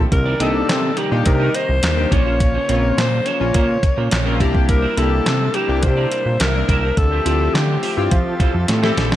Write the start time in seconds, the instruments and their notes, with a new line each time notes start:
0.11 analog synth bass C2, analog synth pad C3 D#3 G3 A#3 D5, alto saxophone A#4, muted clean electric guitar stroke, kick, closed hi-hat
0.25 clean electric guitar D#4 A#4 D5
0.40 analog synth bass C2, analog polysynth A#3 D4 D#4 G4, clean electric guitar D#4 A#4 D#5, alto saxophone A4, closed hi-hat
0.54 muted clean electric guitar stroke
0.69 analog synth bass C3, snare, clap, closed hi-hat
0.83 muted clean electric guitar stroke
0.97 clean electric guitar D#4 A#4 D5, alto saxophone G4, closed hi-hat
1.11 analog synth bass A#2, analog polysynth A#3 D4 D#4 G4, muted clean electric guitar stroke
1.26 analog synth bass C3, alto saxophone A#4, muted clean electric guitar stroke, kick, closed hi-hat
1.40 clean electric guitar D#4 A#4 D#5
1.54 clean electric guitar D#4 A#4 D#5, alto saxophone C5, closed hi-hat
1.69 analog synth bass C2, muted clean electric guitar stroke
1.83 analog synth bass D#2, muted clean electric guitar stroke, snare, clap, closed hi-hat
1.97 analog polysynth A#3 D4 D#4 G4, muted clean electric guitar stroke
2.11 analog synth bass A#1, analog synth pad C#3, analog polysynth A#3 C#4 F4, clean electric guitar C#4 F4 C5, alto saxophone C#5, kick, closed hi-hat
2.25 clean electric guitar C#4 F4 C5
2.40 muted clean electric guitar stroke, kick, closed hi-hat
2.54 clean electric guitar C#4 F4 C5
2.68 analog synth bass A#1, analog polysynth A#3 C4 C#4 F4, clean electric guitar C#4 F4 C#5, closed hi-hat
2.83 muted clean electric guitar stroke
2.97 analog synth bass A#2, alto saxophone C5, muted clean electric guitar stroke, snare, clap, closed hi-hat
3.11 muted clean electric guitar stroke
3.25 clean electric guitar C#4 F4 C5, alto saxophone C#5, closed hi-hat
3.40 analog synth bass A#1, analog polysynth A#3 C#4 F4, muted clean electric guitar stroke
3.54 analog synth bass A#2, clean electric guitar C#4 F4 C5, kick, closed hi-hat
3.69 muted clean electric guitar stroke
3.83 muted clean electric guitar stroke, kick, closed hi-hat
3.97 analog synth bass A#2, clean electric guitar C#4 F4 C5
4.11 analog synth bass A#1, muted clean electric guitar stroke, snare, clap, closed hi-hat
4.25 analog polysynth A#3 C4 C#4 F4, clean electric guitar C#4 F4 C5
4.40 analog synth bass C2, analog synth pad C3 G3 D4 E5, analog polysynth A#3 D4 E4 G4, clean electric guitar E4 A#4 C5, kick, closed hi-hat
4.54 muted clean electric guitar stroke, kick
4.68 alto saxophone A#4, muted clean electric guitar stroke, kick, closed hi-hat
4.82 clean electric guitar E4 A#4 C5
4.97 analog synth bass C2, analog polysynth A#3 D4 E4 G4, clean electric guitar E4 A#4 D5, alto saxophone A4, closed hi-hat
5.11 muted clean electric guitar stroke
5.26 analog synth bass C3, snare, clap, closed hi-hat
5.40 muted clean electric guitar stroke
5.54 clean electric guitar E4 A#4 C5, alto saxophone G4, closed hi-hat
5.68 analog synth bass C2, analog polysynth A#3 D4 E4 G4, muted clean electric guitar stroke
5.83 analog synth bass C3, alto saxophone C5, muted clean electric guitar stroke, kick, closed hi-hat
5.97 clean electric guitar E4 A#4 D5
6.11 clean electric guitar E4 A#4 D5, closed hi-hat
6.25 analog synth bass A#2, muted clean electric guitar stroke
6.40 analog synth bass C2, alto saxophone A#4, snare, clap, closed hi-hat
6.54 analog polysynth A#3 D4 E4 A#4, muted clean electric guitar stroke
6.68 analog synth bass C2, clean electric guitar E4 A#4 C5, kick, closed hi-hat
6.83 clean electric guitar E4 A#4 C5
6.97 analog synth bass D2, analog synth pad D3 F3 A3 C4 G4, alto saxophone A4, muted clean electric guitar stroke, kick, closed hi-hat
7.11 clean electric guitar F4 G4 C5
7.25 analog synth bass D2, analog polysynth C4 E4 F4 G4, clean electric guitar F4 G4 D5, closed hi-hat
7.40 muted clean electric guitar stroke
7.54 analog synth bass D3, alto saxophone G4, snare, clap, closed hi-hat
7.68 muted clean electric guitar stroke
7.83 clean electric guitar F4 G4 C5, open hi-hat
7.97 analog synth bass G2, analog polysynth C4 E4 F4 G4, alto saxophone F4, muted clean electric guitar stroke
8.11 analog synth bass F3, analog synth pad F3 A4, muted clean electric guitar stroke, kick, closed hi-hat
8.26 muted clean electric guitar stroke
8.40 clean electric guitar E4 A4 C5, kick, closed hi-hat
8.54 analog synth bass F2, muted clean electric guitar stroke
8.68 analog synth bass A2, muted clean electric guitar stroke, snare, closed hi-hat
8.82 analog polysynth C4 E4 G4 A4, clean electric guitar E4 A4 C5, snare
8.97 analog synth bass A#1, clean electric guitar E4 A4 C5, snare, closed hi-hat
9.11 muted clean electric guitar stroke, snare